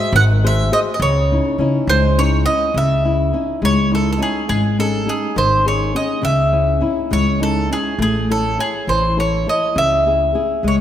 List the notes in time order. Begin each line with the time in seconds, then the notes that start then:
Already playing: F#4 G#4 C5 E5
0.13 G#1 D#3 F#5
0.44 F#4 G#4 C5 E5
0.72 F#4 G#4 C5 D#5
0.94 D#5
1.00 C#2 C#3 C#5
1.31 C#4 D#4 E4
1.58 C#3 C#4 D#4 E4
1.87 C#2 G#3 C5
2.18 C#4 D#4 E4 C#5
2.46 C#4 D#4 E4 D#5
2.74 C#2 C#3 E5
3.05 C#4 E4
3.33 C#4 D#4 E4
3.62 C#2 G#3 C#5
3.91 C#4 D#4 E4 A4
4.12 A4
4.19 C#4 D#4 E4 G#4
4.49 G#1 G#3 G#4
4.79 C#4 D#4 G#4 A4
5.06 C#4 D#4 G#4
5.36 G#1 D#3 C5
5.65 C#4 D#4 G#4 C#5
5.95 C#4 D#4 G#4 D#5
6.22 C#2 C#3 E5
6.52 C#4 E4
6.81 C#4 D#4 E4
7.11 C#2 G#3 C#5
7.40 C#4 D#4 E4 A4
7.71 C#4 D#4 E4 G#4
7.98 A1 A3 G#4
8.30 E4 A4 C#5
8.58 E4 G#4 A4 C#5
8.87 A1 E3 C5
9.17 E4 A4 C#5
9.47 E4 A4 C#5 D#5
9.75 C#2 C#3 E5
10.06 C#4 E4 G#4
10.35 C#4 E4 G#4
10.63 C#2 G#3
10.68 C#5